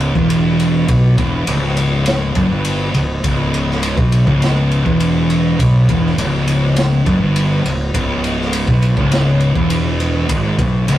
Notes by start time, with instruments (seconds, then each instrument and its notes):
Already playing: fingered electric bass C#1, distorted electric guitar C#2
0.00 ride
0.15 fingered electric bass E1, distorted electric guitar E2, kick
0.30 ride
0.60 ride
0.88 fingered electric bass B1, distorted electric guitar B2, kick, ride
1.18 fingered electric bass E1, distorted electric guitar E2, kick, ride
1.47 fingered electric bass C#1, distorted electric guitar C#2, ride
1.77 ride
2.06 snare, ride
2.35 fingered electric bass F#1, distorted electric guitar F#2, kick, ride
2.51 fingered electric bass G1, distorted electric guitar G2
2.65 ride
2.94 fingered electric bass C#1, distorted electric guitar C#2, ride
3.24 fingered electric bass C#1, distorted electric guitar C#2, kick, ride
3.54 ride
3.70 snare
3.83 ride
3.97 fingered electric bass B1, distorted electric guitar B2, kick
4.12 ride
4.27 fingered electric bass C#1, distorted electric guitar C#2, kick
4.42 snare, ride
4.71 ride
4.86 fingered electric bass E1, distorted electric guitar E2, kick
5.00 ride
5.30 ride
5.59 fingered electric bass B1, distorted electric guitar B2, kick, ride
5.89 fingered electric bass E1, distorted electric guitar E2, kick, ride
6.06 snare
6.18 fingered electric bass C#1, distorted electric guitar C#2, ride
6.47 ride
6.76 snare, ride
7.06 fingered electric bass F#1, distorted electric guitar F#2, kick, ride
7.21 fingered electric bass G1, distorted electric guitar G2
7.36 ride
7.65 fingered electric bass C#1, distorted electric guitar C#2, ride
7.94 fingered electric bass C#1, distorted electric guitar C#2, kick, ride
8.24 ride
8.41 snare
8.53 ride
8.67 fingered electric bass B1, distorted electric guitar B2, kick
8.82 ride
8.96 fingered electric bass C#1, distorted electric guitar C#2, kick
9.12 snare, ride
9.40 ride
9.55 fingered electric bass E1, distorted electric guitar E2, kick
9.70 ride
10.00 ride
10.29 fingered electric bass G#1, distorted electric guitar G#2, kick, ride
10.58 fingered electric bass B1, distorted electric guitar B2, kick, ride
10.87 fingered electric bass C#1, distorted electric guitar C#2, ride